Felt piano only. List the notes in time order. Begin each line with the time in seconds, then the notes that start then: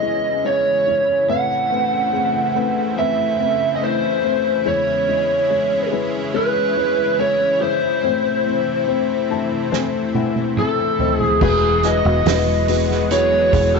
Already playing: E2 E3 G#3 E4 F#4 B4 C#5
0.02 G#3 E4 G#4
0.44 G#3 E4 C#5
0.87 G#3 E4 C#5
1.29 A1 A2 A3 C4 B4
1.71 A3 C4 B4
2.13 A3 C4 G#4
2.55 A3 C4 B4
2.97 A3 C4 B4
3.39 A3 C4 B4
3.81 A3 C4 C5
4.24 A3 C4 C5
4.66 E2 E3 G#3 E4 C#5
5.08 G#3 E4 D#5
5.50 G#3 E4 C#5
5.92 G#3 E4 B4
6.34 G#3 E4 C#5
6.77 G#3 E4 C#5
7.19 G#3 E4 G#4
7.61 G#3 E4 E5
8.03 A1 A2 A3 C4 C5
8.46 A3 C4 C5
8.87 A3 C4 C5
9.30 A3 C4 E4 A5
9.72 A3 C4 C5 G#5
10.14 A3 C4 E4 F#5
10.58 A3 C4 E4 E5
11.00 A3 C4 C5 D#5
11.42 E3 G#3 E4 F#4 B4
11.84 G#3 E4 F#4 B4
12.26 G#3 E4 F#4 B4
12.68 G#3 E4 F#4 B4
13.11 G#3 E4 F#4 B4
13.53 G#3 E4 F#4 G#4